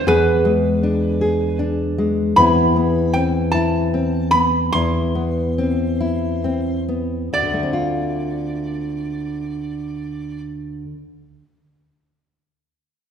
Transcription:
0.07 E2 G#4 B4
0.45 G#3
0.83 D4
1.21 G#4
1.59 D4
1.98 G#3
2.36 E2 E3 B3 C4 E4 B5
2.76 B3
3.13 C4 G5
3.51 E4 A5
3.94 C4
4.31 B3 B5
4.72 E2 E4 C6
5.15 B3
5.58 C4
6.01 E4
6.44 C4
6.88 B3
7.33 D2 D5
7.43 D3
7.53 A3
7.63 C4
7.73 F4

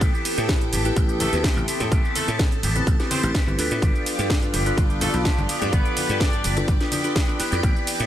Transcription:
Already playing: E4 G4 A4 B4
0.01 A1 E3 B3 C4 G4 G5, kick, closed hi-hat, ride, shaker
0.13 E3 B3 C4 G4, shaker
0.25 open hi-hat, ride, shaker
0.37 A2 B3 C4 G4, closed hi-hat, shaker
0.49 E4 G4 B4, kick, snare, closed hi-hat, ride, shaker
0.61 closed hi-hat, shaker
0.72 A1 E3 B3 C4 G4, open hi-hat, ride, low conga, shaker
0.85 E4 G4 B4, closed hi-hat, shaker
0.96 A1, kick, closed hi-hat, ride, shaker
1.08 B3 C4 G4, closed hi-hat, shaker
1.19 E3 A3 B3 C4 G4 A4, open hi-hat, ride, high conga, low conga, shaker
1.32 D2 B3 C4 E4 G4 B4, closed hi-hat, shaker
1.43 E3 B3 C4 E4 G4 C6, kick, snare, closed hi-hat, ride, shaker
1.57 A1, high conga, shaker
1.67 E3 B3 C4 G4, muted slap bass stroke, open hi-hat, ride, shaker
1.79 A2 B3 C4 G4, closed hi-hat, low conga, shaker
1.91 A1 E3 B3 C4 G4 A5, kick, closed hi-hat, ride, shaker
2.04 E3 B3 C4 G4, shaker
2.15 A3 A4, open hi-hat, ride, high conga, shaker
2.27 A2 B3 C4 G4, closed hi-hat, shaker
2.39 C4 E4 G4 B4, kick, snare, closed hi-hat, ride, shaker
2.52 closed hi-hat, shaker
2.63 A1 E3 B3 C4 G4, open hi-hat, ride, low conga, shaker
2.75 B3 C4 E4 G4 B4, closed hi-hat, high conga, shaker
2.87 A1, kick, closed hi-hat, ride, shaker
2.99 B3 C4 E4 G4 B4, snare, closed hi-hat, shaker
3.10 E3 B3 C4 G4 C5, open hi-hat, ride, high conga, shaker
3.22 A1 B3 C4 E4 G4 B4 C5, closed hi-hat, shaker
3.34 E3 B3 C4 G4, kick, snare, closed hi-hat, ride, shaker
3.47 G1 C4 E4 G4 B4, shaker
3.58 D2 E3 B3 C4 D4 F4 G4 A4 B4, open hi-hat, ride, shaker
3.70 A2 B3 C4 G4, closed hi-hat, shaker
3.82 G1 F3 B3 D4 F4 G4 D5 G5, kick, closed hi-hat, ride, shaker
3.94 F3 B3 D4 G4, shaker
4.06 open hi-hat, ride, shaker
4.18 G2 B3 D4 G4, closed hi-hat, shaker
4.30 D4 F4 A4 B4, kick, snare, closed hi-hat, ride, shaker
4.42 closed hi-hat, shaker
4.53 G1 F3 B3 D4 G4, open hi-hat, ride, low conga, shaker
4.66 B3 D4 F4 G4 A4 B4, closed hi-hat, shaker
4.78 G1, kick, closed hi-hat, ride, shaker
4.89 B3 D4 G4, closed hi-hat, shaker
5.01 F3 A3 B3 D4 G4 A4, open hi-hat, ride, high conga, low conga, shaker
5.13 B1 B3 D4 F4 G4 A4 B4, closed hi-hat, shaker
5.24 F3 B3 D4 F4 G4 A4, kick, snare, closed hi-hat, ride, shaker
5.37 G1, high conga, shaker
5.48 F3 B3 D4 G4, muted slap bass stroke, open hi-hat, ride, shaker
5.61 G2 B3 D4 G4, closed hi-hat, low conga, shaker
5.72 G1 F3 B3 D4 G4 B4, kick, closed hi-hat, ride, shaker
5.85 F3 B3 D4 G4, closed hi-hat, shaker
5.96 open hi-hat, ride, high conga, shaker
6.08 G2 B3 D4 G4, closed hi-hat, shaker
6.20 D4 F4 A4 B4 D5, kick, snare, closed hi-hat, ride, shaker
6.33 closed hi-hat, shaker
6.44 G1 F3 B3 D4 G4, open hi-hat, ride, low conga, shaker
6.56 B3 D4 F4 G4 A4 B4, closed hi-hat, high conga, shaker
6.68 G1, kick, closed hi-hat, ride, shaker
6.80 B3 D4 F4 G4 A4 B4, snare, closed hi-hat, shaker
6.91 F3 B3 D4 G4, open hi-hat, ride, high conga, shaker
7.04 B3 D4 F4 G4 A4 B4, closed hi-hat, shaker
7.15 F3 B3 D4 G4, kick, snare, closed hi-hat, ride, shaker
7.28 D4 F4 A4 B4, shaker
7.39 F3 B3 D4 E4 G4 B4, muted slap bass stroke, open hi-hat, ride, shaker
7.51 F2 B3 D4 G4, closed hi-hat, shaker
7.63 A1 E3 B3 C4 G4, kick, closed hi-hat, ride, shaker
7.75 E3 B3 C4 G4, shaker
7.87 open hi-hat, ride, shaker
7.99 A2 B3 C4 G4, closed hi-hat, shaker

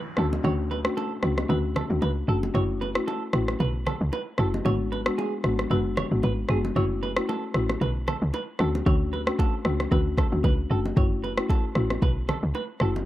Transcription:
Already playing: downlifter
0.17 D2 A3 C#4 D4 F#4 A4, cross-stick
0.33 high bongo, low bongo
0.44 D2 A3 C#4 D4 F#4 C#5, low conga
0.71 B4, low bongo
0.85 A3 C#4 D4 F#4, cross-stick
0.97 A4, high bongo
1.23 C#2 A3 C#4 D4 F#4, cross-stick
1.38 cross-stick, low bongo
1.49 D2 A3 C#4 D4 F#4 B4, low conga
1.76 A4, cross-stick, low bongo, low conga
1.90 D2 A3 C#4 D4 F#4
2.02 C#2 B4, high bongo
2.28 F#1 A3 C#4 D4 F#4 A4
2.43 high bongo, low bongo
2.54 F#1 A3 C#4 E4 F#4 C#5, low conga
2.81 B4, low bongo
2.95 A3 C#4 E4 F#4, cross-stick
3.08 A4, high bongo
3.33 A1 A3 C#4 E4 F#4, cross-stick
3.48 cross-stick, low bongo
3.60 B1 B4, low conga
3.86 A4, cross-stick, low bongo, low conga
4.01 C#2
4.13 B4, high bongo
4.38 F#1 A3 C#4 E4 F#4 A4, cross-stick
4.54 high bongo, low bongo
4.65 G#1 G#3 B3 D4 F#4 C#5, low conga
4.92 B4, low bongo
5.06 G#3 B3 D4 F#4, cross-stick
5.18 G#4, high bongo
5.44 G#1 G#3 B3 D4 F#4, cross-stick
5.59 cross-stick, low bongo
5.70 F#1 G#3 B3 D4 F#4 B4, low conga
5.97 C#5, cross-stick, low bongo, low conga
6.11 G#1 G#3 B3 D4 F#4
6.23 G#1 B4, high bongo
6.49 F#1 G#3 B3 D4 F#4 G#4, cross-stick
6.65 high bongo, low bongo
6.76 F#1 A3 C#4 E4 F#4 C#5, low conga
7.03 B4, low bongo
7.17 A3 C#4 E4 F#4, cross-stick
7.29 A4, high bongo
7.54 A1 A3 C#4 E4 F#4, cross-stick
7.69 cross-stick, low bongo
7.81 B1 B4, low conga
8.08 A4, cross-stick, low bongo, low conga
8.22 C#2
8.34 B4, high bongo
8.59 D2 A3 C#4 D4 F#4 A4, cross-stick
8.75 high bongo, low bongo
8.86 D2 A3 C#4 D4 F#4 C#5, kick, low conga
9.13 B4, low bongo
9.27 A3 C#4 D4 F#4, cross-stick
9.39 A4, kick, high bongo
9.65 C#2 A3 C#4 D4 F#4, cross-stick
9.80 cross-stick, low bongo
9.91 D2 A3 C#4 D4 F#4 B4, kick, low conga
10.18 A4, kick, cross-stick, low bongo, low conga
10.32 D2 A3 C#4 D4 F#4
10.44 C#2 B4, kick, high bongo
10.70 F#1 A3 C#4 D4 F#4 A4
10.86 high bongo, low bongo
10.97 F#1 A3 C#4 E4 F#4 C#5, kick, low conga
11.24 B4, low bongo
11.37 A3 C#4 E4 F#4, cross-stick
11.49 A4, kick, high bongo
11.75 A1 A3 C#4 E4 F#4, cross-stick
11.90 cross-stick, low bongo
12.02 B1 B4, kick, low conga
12.29 A4, cross-stick, low bongo, low conga
12.43 C#2
12.55 B4, high bongo
12.80 F#1 A3 C#4 E4 F#4 A4, cross-stick
12.96 high bongo, low bongo

